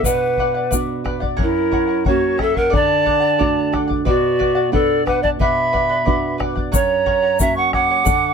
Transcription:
0.03 nylon-string guitar B2, pan flute B4, charango B4 D5 F#5, quena F#5, bombo low, shaker
0.37 charango B4 D5 F#5, bombo low
0.54 charango D5 F#5
0.70 nylon-string guitar B3 D4 F#4, charango B4 D5 F#5, bombo low, shaker
1.04 charango B4 D5 F#5, bombo rim, bombo low
1.20 charango D5 F#5, bombo low
1.36 nylon-string guitar F#2, charango A#4 C#5 F#5, bombo low
1.42 pan flute E4, quena A#4
1.71 charango A#4 C#5 F#5, bombo low
1.87 charango C#5 F#5
2.05 nylon-string guitar F#3 A#3 C#4, pan flute F#4, charango A#4 C#5 F#5, quena C#5, bombo low
2.37 pan flute A4, charango A#4 C#5 F#5, quena E5, bombo rim, bombo low
2.54 pan flute A#4, charango C#5 F#5, quena F#5, bombo low
2.70 nylon-string guitar D3, charango A4 D5 F#5, bombo low
2.75 pan flute D5, quena A5 A#5
3.04 charango A4 D5 F#5, bombo low
3.20 charango D5 F#5
3.38 nylon-string guitar A3 D4 F#4, charango A4 D5 F#5, bombo low
3.72 charango A4 D5 F#5, bombo rim, bombo low
3.88 charango D5 F#5, bombo low
4.05 nylon-string guitar B2, pan flute F#4, charango B4 D5 F#5, quena D5, bombo low
4.39 charango B4 D5 F#5, bombo low
4.55 charango D5 F#5
4.72 nylon-string guitar B3 D4 F#4, pan flute A4, charango B4 D5 F#5, quena D5, bombo low
5.06 charango B4 D5 F#5, pan flute B4, quena F#5, bombo rim, bombo low
5.22 pan flute D5, charango D5 F#5, quena A5, bombo low
5.39 nylon-string guitar B2, charango B4 D5 F#5, pan flute E5, quena B5, bombo low
5.72 charango B4 D5 F#5, bombo low
5.89 charango D5 F#5
6.05 nylon-string guitar B3 D4 F#4, charango B4 D5 F#5, bombo low
6.38 charango B4 D5 F#5, bombo rim, bombo low
6.56 charango D5 F#5, bombo low
6.72 nylon-string guitar F#2, charango A#4 C#5 F#5, pan flute C#5, quena A#5, bombo low, shaker
7.06 charango A#4 C#5 F#5, bombo low
7.22 charango C#5 F#5
7.39 nylon-string guitar A#3 C#4 F#4, charango A#4 C#5 F#5, pan flute E5, quena A#5, bombo low, shaker
7.55 pan flute F#5, quena C#6
7.73 charango A#4 C#5 F#5, pan flute F#5, quena D6, bombo rim, bombo low
7.90 charango C#5 F#5
8.04 nylon-string guitar D3, charango A4 D5 F#5, bombo low, shaker

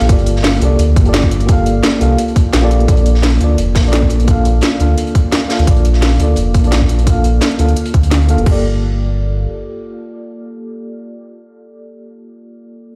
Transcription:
Already playing: fm electric piano A#3 F4 G4 A4 D5 F5
0.01 sub bass A#1, closed hi-hat
0.06 sub bass G1, fm electric piano A#3 F4 G4, kick, closed hi-hat
0.11 fm electric piano A4 D5
0.19 closed hi-hat
0.26 closed hi-hat
0.36 snare
0.44 snare, closed hi-hat, open hi-hat
0.58 sub bass C2, fm electric piano A#3 F4 G4, closed hi-hat
0.63 fm electric piano A4 D5
0.79 sub bass D2, closed hi-hat
0.96 sub bass G1, kick, closed hi-hat
1.02 fm electric piano A#3 F4 G4, closed hi-hat
1.07 fm electric piano A4 D5
1.14 snare, closed hi-hat
1.23 kick
1.31 closed hi-hat
1.40 closed hi-hat
1.45 fm electric piano A#3 F4 G4, kick, closed hi-hat
1.50 fm electric piano A4 F5
1.66 closed hi-hat
1.83 snare, closed hi-hat
1.99 sub bass C2, fm electric piano A#3 F4 G4 A4 F5, closed hi-hat
2.18 closed hi-hat
2.28 closed hi-hat
2.36 kick, closed hi-hat
2.53 sub bass A#1, snare, closed hi-hat
2.61 fm electric piano A#3 F4 G4 A4 D5
2.71 closed hi-hat
2.80 closed hi-hat
2.85 sub bass A#1, fm electric piano A#3 D4 F4, kick, closed hi-hat
2.90 fm electric piano A4 D5
2.97 closed hi-hat
3.06 closed hi-hat
3.15 snare
3.23 snare, closed hi-hat, open hi-hat
3.37 sub bass D2, fm electric piano A#3 D4 F4, closed hi-hat
3.42 fm electric piano A4 D5
3.58 sub bass F1, closed hi-hat
3.75 sub bass A#1, kick, snare, closed hi-hat, open hi-hat
3.81 fm electric piano A#3 D4 F4
3.86 fm electric piano A4 D5
3.93 snare, closed hi-hat
4.02 kick
4.10 closed hi-hat
4.20 closed hi-hat
4.24 fm electric piano A#3 D4 F4, kick, closed hi-hat
4.29 fm electric piano A4 F5
4.45 closed hi-hat
4.61 snare, closed hi-hat
4.63 closed hi-hat
4.78 sub bass D2, fm electric piano A#3 D4 F4 A4 F5, closed hi-hat
4.98 closed hi-hat
5.07 closed hi-hat
5.15 kick, closed hi-hat
5.32 snare, closed hi-hat
5.48 fm electric piano A#3 D4 F4 A4 F5, snare, closed hi-hat, open hi-hat
5.59 sub bass D2, closed hi-hat
5.64 sub bass A#1, fm electric piano A#3 D4 F4, kick, closed hi-hat
5.69 fm electric piano A4 D5
5.76 closed hi-hat
5.85 closed hi-hat
5.93 snare
6.02 snare, closed hi-hat, open hi-hat
6.16 sub bass D2, fm electric piano A#3 D4 F4, closed hi-hat
6.21 fm electric piano A4 D5
6.36 sub bass F1, closed hi-hat
6.54 sub bass A#1, kick, closed hi-hat
6.61 fm electric piano A#3 D4 F4, closed hi-hat
6.66 fm electric piano A4 D5
6.72 snare, closed hi-hat
6.81 kick
6.89 closed hi-hat
6.99 closed hi-hat
7.03 fm electric piano A#3 D4 F4, kick, closed hi-hat
7.08 fm electric piano A4 F5
7.24 closed hi-hat
7.41 snare, closed hi-hat
7.51 closed hi-hat
7.57 sub bass D2, fm electric piano A#3 D4 F4 A4 F5, closed hi-hat
7.68 closed hi-hat
7.76 closed hi-hat
7.85 closed hi-hat
7.94 sub bass D2, kick, closed hi-hat
8.03 closed hi-hat
8.11 snare, closed hi-hat
8.22 closed hi-hat
8.27 fm electric piano A#3 D4 F4 A4 F5, closed hi-hat
8.38 sub bass F1, fm electric piano A#3, closed hi-hat
8.44 sub bass G1, fm electric piano F4 G4, kick, crash
8.49 fm electric piano A4 D5

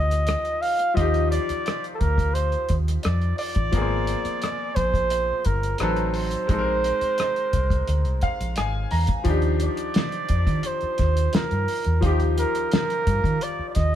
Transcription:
Already playing: fingered electric bass D2, grand piano F3 D#4 F4 G4, flugelhorn D#5
0.11 cross-stick, closed hi-hat
0.27 cross-stick, closed hi-hat
0.45 closed hi-hat
0.62 flugelhorn F5, open hi-hat
0.79 closed hi-hat
0.94 fingered electric bass D#2, grand piano F3 F4, flugelhorn D#5, kick, closed hi-hat
0.98 grand piano D#4 G4
1.14 closed hi-hat
1.32 flugelhorn D5, closed hi-hat
1.49 muted fingered electric bass stroke, closed hi-hat
1.66 cross-stick, closed hi-hat
1.84 closed hi-hat
1.95 flugelhorn A4
2.00 fingered electric bass D2, flugelhorn A#4, kick, closed hi-hat
2.18 kick, closed hi-hat
2.34 flugelhorn C5, closed hi-hat
2.52 closed hi-hat
2.69 fingered electric bass D#2, kick, cross-stick, closed hi-hat
2.88 cross-stick, closed hi-hat
3.03 fingered electric bass F2, flugelhorn D5, cross-stick, closed hi-hat
3.22 closed hi-hat
3.38 flugelhorn D5, open hi-hat
3.55 fingered electric bass A1, kick, closed hi-hat
3.72 fingered electric bass G#1, grand piano F3 A#3 B3, kick, closed hi-hat
3.77 grand piano G#4
3.81 grand piano C4
4.07 closed hi-hat
4.25 muted fingered electric bass stroke, closed hi-hat
4.42 cross-stick, closed hi-hat
4.76 fingered electric bass A#1, flugelhorn C5, kick, closed hi-hat
4.94 kick, closed hi-hat
5.10 closed hi-hat
5.45 fingered electric bass G1, flugelhorn A#4, kick, closed hi-hat
5.63 closed hi-hat
5.78 fingered electric bass A1, grand piano F#3 C4 D#4 A4, flugelhorn B4, cross-stick, closed hi-hat
5.97 closed hi-hat
6.09 flugelhorn B4
6.14 flugelhorn C5, open hi-hat
6.31 closed hi-hat
6.47 fingered electric bass A#1, grand piano G#3 C4 D#4, kick, closed hi-hat
6.52 grand piano A4
6.58 grand piano A#4
6.84 closed hi-hat
7.01 muted fingered electric bass stroke, closed hi-hat
7.18 cross-stick, closed hi-hat
7.36 closed hi-hat
7.53 fingered electric bass C2, kick, closed hi-hat
7.70 kick, closed hi-hat
7.88 fingered electric bass D2, closed hi-hat
8.05 fingered electric bass C2, closed hi-hat
8.21 grand piano F5, kick, cross-stick, closed hi-hat
8.41 fingered electric bass A#1, closed hi-hat
8.56 fingered electric bass G#1, grand piano G#5, cross-stick, closed hi-hat
8.91 fingered electric bass E2, grand piano A#5, open hi-hat
9.07 kick, closed hi-hat
9.24 fingered electric bass D#2, grand piano F3 D4 D#4, kick, closed hi-hat
9.29 grand piano G4
9.42 closed hi-hat
9.60 flugelhorn D5, closed hi-hat
9.77 closed hi-hat
9.94 snare, closed hi-hat
10.12 closed hi-hat
10.29 fingered electric bass F2, kick, closed hi-hat
10.47 fingered electric bass D#3, kick, closed hi-hat
10.63 flugelhorn C5, closed hi-hat
10.81 muted fingered electric bass stroke, closed hi-hat
10.98 fingered electric bass D#2, kick, snare, closed hi-hat
11.17 closed hi-hat
11.33 flugelhorn A#4, muted fingered electric bass stroke, snare, closed hi-hat
11.51 fingered electric bass G2, closed hi-hat
11.68 open hi-hat
11.84 fingered electric bass E2, closed hi-hat
12.01 fingered electric bass D#2, grand piano F3 D#4 F4, kick, closed hi-hat
12.05 flugelhorn G4, grand piano G4
12.20 closed hi-hat
12.38 flugelhorn A#4, closed hi-hat
12.55 closed hi-hat
12.72 flugelhorn A#4, snare, closed hi-hat
12.90 closed hi-hat
13.07 fingered electric bass G2, kick, closed hi-hat
13.24 fingered electric bass D#3, kick, closed hi-hat
13.41 flugelhorn D5, closed hi-hat
13.59 muted fingered electric bass stroke
13.70 flugelhorn D5
13.75 fingered electric bass D#2, flugelhorn D#5, kick, snare, closed hi-hat

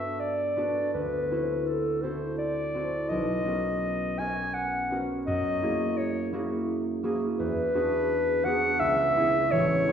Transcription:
Already playing: harp G2 B3 D4 F#4 G4 A4, clarinet E5
0.20 clarinet D5
0.57 harp B3 D4 F#4 A4
0.94 harp D2, clarinet B4
1.31 harp C4 E4 F#4 A4
1.67 clarinet A4
2.02 harp C4 E4 F#4 A4, clarinet C5
2.38 clarinet D5
2.74 harp C4 E4 F#4 A4
3.09 harp B1, clarinet D#5
3.45 harp B3 C#4 F#4
3.49 harp A#4
4.19 harp B3 C#4 F#4 A#4, clarinet G#5
4.54 clarinet F#5
4.91 harp B3 C#4 F#4 A#4
5.27 harp F#2, clarinet D#5
5.62 harp A#3 E4 F#4 G#4
5.98 clarinet C#5
6.33 harp A#3 E4 F#4 G#4
7.03 harp A#3 E4 F#4 G#4
7.39 harp E2, clarinet B4
7.74 harp B3 D4 F#4 G#4
8.43 harp B3 D4 F#4, clarinet F#5
8.48 harp G#4
8.80 harp C#2, clarinet E5
9.16 harp B3 C#4 E4 G#4
9.51 harp A1, clarinet C#5
9.87 harp B3 C#4 E4 G#4

